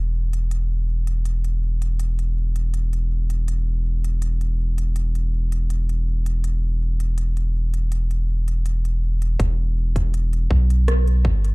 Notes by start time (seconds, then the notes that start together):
Already playing: E1
0.33 closed hi-hat
0.51 closed hi-hat
1.07 closed hi-hat
1.25 closed hi-hat
1.44 closed hi-hat
1.82 closed hi-hat
2.00 closed hi-hat
2.19 closed hi-hat
2.56 closed hi-hat
2.74 closed hi-hat
2.93 closed hi-hat
3.30 closed hi-hat
3.48 closed hi-hat
4.04 closed hi-hat
4.22 closed hi-hat
4.41 closed hi-hat
4.78 closed hi-hat
4.96 closed hi-hat
5.15 closed hi-hat
5.52 closed hi-hat
5.70 closed hi-hat
5.89 closed hi-hat
6.26 closed hi-hat
6.44 closed hi-hat
7.00 closed hi-hat
7.18 closed hi-hat
7.37 closed hi-hat
7.74 closed hi-hat
7.92 closed hi-hat
8.11 closed hi-hat
8.48 closed hi-hat
8.66 closed hi-hat
8.85 closed hi-hat
9.22 closed hi-hat
9.40 E1, kick, closed hi-hat
9.96 kick, closed hi-hat
10.14 closed hi-hat
10.33 closed hi-hat
10.51 B1, kick
10.70 closed hi-hat
10.88 cross-stick, closed hi-hat
11.07 closed hi-hat
11.25 G1, kick
11.45 closed hi-hat